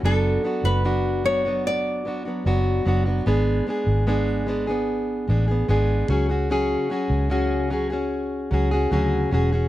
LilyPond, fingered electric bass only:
\new Staff \with { instrumentName = "Fingered electric bass" } { \clef bass \time 4/4 \key cis \phrygian \tempo 4 = 74 fis,,8 r16 fis,,4.~ fis,,16 gis,,8 fis,,8 fis,,8 | gis,,8 r16 gis,,4.~ gis,,16 a,,8 gis,,8 cis,8~ | cis,8 r16 cis,4.~ cis,16 cis,8 d,8 e,,8 | }